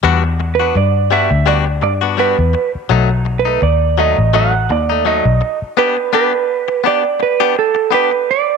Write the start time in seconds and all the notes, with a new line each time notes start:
0.03 E2 G3 B3 D4 F#4
0.24 muted clean electric guitar stroke
0.40 muted clean electric guitar stroke
0.55 B4
0.60 B3 D4 F#4
0.75 G2 D5, muted clean electric guitar stroke
1.11 G3 B3 D4 F#4 E5
1.31 D2, muted clean electric guitar stroke
1.46 G3 B3 D4 F#4 D5
1.66 muted clean electric guitar stroke
1.82 G2 D5, muted clean electric guitar stroke
2.01 B3 D4 F#4
2.17 G3 B3 D4 F#4 B4
2.38 E2, muted clean electric guitar stroke
2.54 muted clean electric guitar stroke
2.75 muted fingered electric bass stroke
2.89 B1 F#3 A3 D#4
3.09 muted clean electric guitar stroke
3.25 muted clean electric guitar stroke
3.39 B4
3.45 A3 D#4
3.61 D#2 D5, muted clean electric guitar stroke
3.98 F#3 A3 D#4 D#5
4.18 A1, muted clean electric guitar stroke
4.34 F#3 A3 D#4 F#5
4.54 muted clean electric guitar stroke
4.70 D#2 D5, muted clean electric guitar stroke
4.90 A3 D#4
5.05 F#3 A3 D#4 D#5
5.25 B1, muted clean electric guitar stroke
5.41 muted clean electric guitar stroke
5.62 muted fingered electric bass stroke
5.77 B3 D4 G4 B4
5.97 muted clean electric guitar stroke
6.13 B3 D4 G4 B4
6.33 muted clean electric guitar stroke
6.68 muted clean electric guitar stroke
6.84 B3 D4 G4 D5
7.04 muted clean electric guitar stroke
7.20 B4, muted clean electric guitar stroke
7.40 B3 D4 G4
7.56 A4, muted clean electric guitar stroke
7.75 muted clean electric guitar stroke
7.91 B3 D4 G4 B4
8.11 muted clean electric guitar stroke
8.31 D5